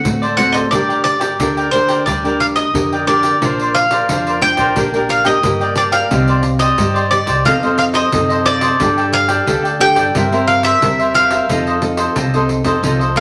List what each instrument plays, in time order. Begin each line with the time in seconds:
Already playing: mandolin F#5
0.03 upright bass D2, nylon-string guitar A2 A3 C4 F#4, pandeiro
0.22 cavaquinho A4 C5 D5, pandeiro
0.37 nylon-string guitar A3 C4 F#4, cavaquinho F#4 A4 C5 D5, mandolin F#5, pandeiro
0.52 cavaquinho A4 C5 D5, mandolin D#5, pandeiro
0.71 upright bass G1, nylon-string guitar G3 D4 G4 A#4, cavaquinho D4 A#4 D5 G5, mandolin D5, pandeiro
0.89 cavaquinho A#4 D5 G5, pandeiro
1.04 mandolin D5, muted cavaquinho stroke, pandeiro
1.20 cavaquinho A#4 D5 G5, pandeiro
1.39 upright bass D2, nylon-string guitar D3 D4 G4 A#4, cavaquinho D4 A#4 D5 G5, pandeiro
1.57 cavaquinho A#4 D5 G5, pandeiro
1.71 nylon-string guitar D4 G4 A#4, mandolin C5, pandeiro
1.89 cavaquinho A#4 D5 G5, pandeiro
2.06 upright bass D2, nylon-string guitar G3, cavaquinho D4 A#4 D5 G5, mandolin D5, pandeiro
2.24 nylon-string guitar D4 G4 A#4, cavaquinho A#4 D5 G5, pandeiro
2.40 mandolin F5, muted cavaquinho stroke, pandeiro
2.56 mandolin D#5, pandeiro
2.74 upright bass F2, nylon-string guitar D3 D4 G4 A#4, pandeiro
2.92 cavaquinho A#4 D5 G5, pandeiro
3.06 nylon-string guitar D4 G4 A#4, cavaquinho D4 A#4 D5, mandolin D5, pandeiro
3.11 cavaquinho G5
3.23 cavaquinho A#4 D5 G5, pandeiro
3.41 upright bass A#1, nylon-string guitar A#3 D4 F4 C5, cavaquinho D4 A#4 C5, pandeiro
3.45 cavaquinho D5
3.59 cavaquinho A#4 C5 D5, pandeiro
3.75 mandolin F5, muted cavaquinho stroke, pandeiro
3.91 cavaquinho A#4 C5 D5, pandeiro
4.09 upright bass F2, nylon-string guitar F3 D4 F4 C5, cavaquinho D4 A#4 C5 D5, pandeiro
4.27 cavaquinho A#4 C5 D5, pandeiro
4.41 nylon-string guitar D4 F4 C5, mandolin G5, muted cavaquinho stroke, pandeiro
4.57 upright bass A#1, cavaquinho A#4 C5 D5, pandeiro
4.76 upright bass A#1, nylon-string guitar A#3 D4 G4 A#4, cavaquinho D4 A#4 D5 G5, pandeiro
4.93 nylon-string guitar D4 G4 A#4, cavaquinho A#4 D5 G5, pandeiro
5.09 mandolin F5, pandeiro
5.24 nylon-string guitar D4 G4 A#4, cavaquinho A#4 G5, mandolin D#5, pandeiro
5.43 upright bass G2, nylon-string guitar A#3 G4 A#4, pandeiro
5.60 cavaquinho A#4 D5 G5, pandeiro
5.76 cavaquinho D4 A#4 D5 G5, mandolin D5, pandeiro
5.92 cavaquinho A#4 D5 G5, mandolin F5, pandeiro
6.11 upright bass C2, nylon-string guitar C4 D#4 G4 D5, cavaquinho D#4 G4 C5 D5, pandeiro
6.28 cavaquinho G4 C5 D5, pandeiro
6.43 muted cavaquinho stroke, pandeiro
6.59 cavaquinho G4 C5 D5, mandolin D#5, pandeiro
6.78 upright bass G2, nylon-string guitar G3 D#4 G4 D5, cavaquinho D#4 G4 C5 D5, pandeiro
6.94 cavaquinho G4 C5 D5, pandeiro
7.11 nylon-string guitar D#4 G4 D5, mandolin D5, muted cavaquinho stroke, pandeiro
7.26 upright bass C2, cavaquinho G4 C5 D5, pandeiro
7.44 upright bass F2, nylon-string guitar F3 C4 D#4 A4, cavaquinho F4 A4 C5 D#5, mandolin F5, pandeiro
7.63 nylon-string guitar C4 D#4 A4, cavaquinho A4 C5 D#5, pandeiro
7.78 mandolin F5, pandeiro
7.93 cavaquinho A4 C5 D#5, mandolin D#5, pandeiro
8.12 upright bass F#2, nylon-string guitar C3 C4 D#4 A4, pandeiro
8.29 cavaquinho A4 C5 D#5, pandeiro
8.45 cavaquinho F4 A4 C5 D#5, mandolin D5, pandeiro
8.61 cavaquinho A4 C5 D#5, pandeiro
8.80 upright bass G2, nylon-string guitar G3 D4 G4 A4, cavaquinho D4 A4 D5 G5, pandeiro
8.97 cavaquinho A4 D5 G5, pandeiro
9.13 mandolin F5, muted cavaquinho stroke, pandeiro
9.28 cavaquinho A4 D5 G5, pandeiro
9.46 upright bass D2, nylon-string guitar D3 D4 G4 A4, cavaquinho D4 A4 D5 G5, pandeiro
9.64 cavaquinho A4 D5 G5, pandeiro
9.79 nylon-string guitar D4 G4 A4, mandolin G5, muted cavaquinho stroke, pandeiro
9.96 upright bass G2, cavaquinho A4 D5 G5, pandeiro
10.14 upright bass G2, nylon-string guitar G3 C4 E4 A#4, cavaquinho E4 A#4 C5 E5, pandeiro
10.32 nylon-string guitar C4 E4 A#4, cavaquinho A#4 C5 E5, pandeiro
10.47 mandolin F5, pandeiro
10.63 cavaquinho A#4 C5 E5, mandolin E5, pandeiro
10.82 upright bass E2, nylon-string guitar G3 C4 E4 A#4, pandeiro
10.99 cavaquinho A#4 C5 E5, pandeiro
11.14 cavaquinho E4 A#4 C5 E5, mandolin F5, pandeiro
11.31 cavaquinho A#4 C5 E5, pandeiro
11.49 upright bass F2, nylon-string guitar F3 C4 D#4 A4, cavaquinho F4 A4 C5 D#5, pandeiro
11.67 cavaquinho A4 C5 D#5, pandeiro
11.82 nylon-string guitar C4 D#4 A4, muted cavaquinho stroke, pandeiro
11.97 cavaquinho A4 C5 D#5, pandeiro
12.16 upright bass C2, nylon-string guitar C3, cavaquinho F4 A4 C5 D#5, pandeiro
12.34 nylon-string guitar C4 D#4 A4, cavaquinho A4 C5 D#5, pandeiro
12.49 muted cavaquinho stroke, pandeiro
12.64 upright bass F2, nylon-string guitar C4 D#4 A4, cavaquinho A4 C5 D#5, pandeiro
12.83 upright bass C2, nylon-string guitar F3 C4 D#4 A4, cavaquinho F4 A4 C5 D#5, pandeiro
12.99 cavaquinho A4 C5 D#5, pandeiro
13.15 nylon-string guitar C4 D#4 A4, pandeiro